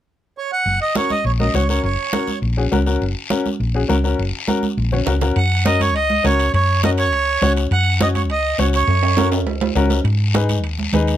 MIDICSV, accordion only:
0, 0, Header, 1, 2, 480
1, 0, Start_track
1, 0, Tempo, 293542
1, 1083, Time_signature, 4, 2, 24, 8
1, 18268, End_track
2, 0, Start_track
2, 0, Title_t, "Accordion"
2, 0, Program_c, 0, 21
2, 621, Note_on_c, 0, 73, 74
2, 836, Note_off_c, 0, 73, 0
2, 857, Note_on_c, 0, 78, 94
2, 1298, Note_off_c, 0, 78, 0
2, 1337, Note_on_c, 0, 75, 82
2, 1555, Note_off_c, 0, 75, 0
2, 1586, Note_on_c, 0, 73, 80
2, 1815, Note_on_c, 0, 75, 81
2, 1823, Note_off_c, 0, 73, 0
2, 2034, Note_off_c, 0, 75, 0
2, 2051, Note_on_c, 0, 73, 72
2, 2158, Note_off_c, 0, 73, 0
2, 2290, Note_on_c, 0, 75, 62
2, 2512, Note_off_c, 0, 75, 0
2, 2524, Note_on_c, 0, 73, 65
2, 2744, Note_off_c, 0, 73, 0
2, 2768, Note_on_c, 0, 73, 65
2, 2981, Note_off_c, 0, 73, 0
2, 3006, Note_on_c, 0, 73, 66
2, 3903, Note_off_c, 0, 73, 0
2, 8778, Note_on_c, 0, 78, 90
2, 9221, Note_off_c, 0, 78, 0
2, 9257, Note_on_c, 0, 75, 88
2, 9501, Note_off_c, 0, 75, 0
2, 9504, Note_on_c, 0, 73, 84
2, 9721, Note_off_c, 0, 73, 0
2, 9731, Note_on_c, 0, 75, 92
2, 10225, Note_off_c, 0, 75, 0
2, 10228, Note_on_c, 0, 73, 86
2, 10665, Note_off_c, 0, 73, 0
2, 10704, Note_on_c, 0, 73, 82
2, 11143, Note_off_c, 0, 73, 0
2, 11184, Note_on_c, 0, 75, 86
2, 11288, Note_off_c, 0, 75, 0
2, 11428, Note_on_c, 0, 73, 97
2, 12311, Note_off_c, 0, 73, 0
2, 12635, Note_on_c, 0, 78, 94
2, 13067, Note_off_c, 0, 78, 0
2, 13114, Note_on_c, 0, 75, 94
2, 13215, Note_off_c, 0, 75, 0
2, 13340, Note_on_c, 0, 73, 72
2, 13445, Note_off_c, 0, 73, 0
2, 13590, Note_on_c, 0, 75, 80
2, 14023, Note_off_c, 0, 75, 0
2, 14070, Note_on_c, 0, 73, 70
2, 14172, Note_off_c, 0, 73, 0
2, 14314, Note_on_c, 0, 73, 81
2, 15192, Note_off_c, 0, 73, 0
2, 18268, End_track
0, 0, End_of_file